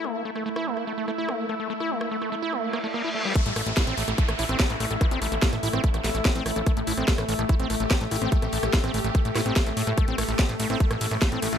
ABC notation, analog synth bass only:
X:1
M:4/4
L:1/16
Q:1/4=145
K:Cmix
V:1 name="Analog synth bass" clef=bass
z16 | z16 | z A,,, A,,, A,,, z A,,, A,,, A,,, z A,,, A,,, A,,, z A,,, A,,, A,,, | z A,,, A,,, A,,, z A,,, A,,, A,,, z A,,, A,,, A,,, z A,,, A,,, A,,, |
z A,,, A,,, A,,, z A,,, A,,, A,,, z A,,, A,,, A,,, z A,,, A,,, A,,, | z A,,, A,,, A,,, z A,,, A,,, A,,, z A,,, A,,, A,,, z A,,, A,, A,, | z A,,, A,,, A,,, z A,,, A,,, A,,, z A,,, A,,, A,,, z A,,, A,,, A,,, |]